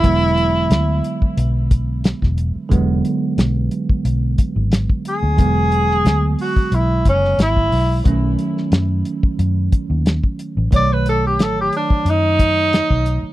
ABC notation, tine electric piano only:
X:1
M:4/4
L:1/8
Q:"Swing 16ths" 1/4=90
K:Emix
V:1 name="Tine electric piano" clef=bass
[D,F,G,B,]8 | [D,F,G,B,]8 | [D,F,G,B,]8 | [^D,F,A,C]8 |
[^D,F,A,c]8 |]